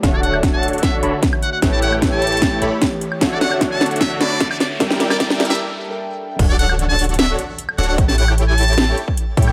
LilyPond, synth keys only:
\new Staff \with { instrumentName = "Synth keys" } { \time 4/4 \key d \major \tempo 4 = 151 <d d' fis' cis'' e''>8. <d d' fis' cis'' e''>2.~ <d d' fis' cis'' e''>16 | <a e' g' b' cis''>8. <a e' g' b' cis''>2.~ <a e' g' b' cis''>16 | <d d' fis' cis'' e''>8. <d d' fis' cis'' e''>2.~ <d d' fis' cis'' e''>16 | <g d' a' bes' e''>8. <g d' bes' e'' a''>2 <g d' a' bes' g''>4~ <g d' a' bes' g''>16 |
r1 | r1 | }